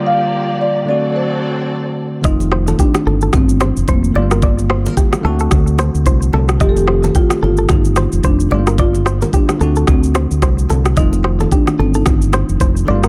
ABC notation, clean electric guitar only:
X:1
M:4/4
L:1/16
Q:"Swing 16ths" 1/4=110
K:Fmix
V:1 name="Clean electric guitar"
z16 | e z c A G z A A z2 c z c z d B | d z c B G z A A z2 c z c z A z | e z c A G z A A z2 c z c z d B |
d z c B G z A A z2 c z c z A z | e z c A G z A A z2 c z c z d B |]